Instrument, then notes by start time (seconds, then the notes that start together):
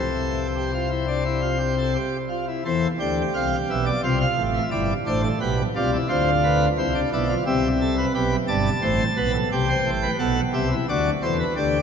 pipe organ
Already playing: C2 C3 A4 C5
0.56 G4
0.74 F4
0.90 E4
1.07 D4
1.25 E4
1.42 F4
1.59 G4
1.78 A4
1.95 G4
2.30 F4
2.48 E4
2.65 E2 E3 A4 C5
3.00 D2 D3 G4 G5
3.34 C2 C3 F5
3.70 B1 B2 E5
3.86 D5
4.03 C2 C3 F4 C5
4.21 F5
4.37 A1 A2
4.54 E5
4.71 G1 G2 E4 D5
5.06 A1 A2 D4 C5
5.23 A4
5.41 B1 B2 G4 B4
5.76 C2 C3 F4 D5
5.93 E4
6.08 D2 D3 F4 C5
6.44 B4
6.78 C2 C3 E4 C5
6.94 D4
7.12 B1 B2 E4 D5
7.29 F4
7.46 C2 C3 G4 E5
7.81 A4
7.98 B4
8.15 B1 B2 G4 B5
8.48 G1 G2 D5 A5
8.82 A1 A2 C5
9.17 B1 B2 B4
9.35 A4
9.52 C2 C3 G4 G5
9.69 C5
9.85 A1 A2
10.03 B4
10.19 B1 B2 A4 F#5
10.53 C2 C3 G4 E5
10.71 E4
10.89 D2 D3 F#4 D5
11.22 E2 E3 A4 C5
11.40 B4
11.56 D2 D3 G4 D5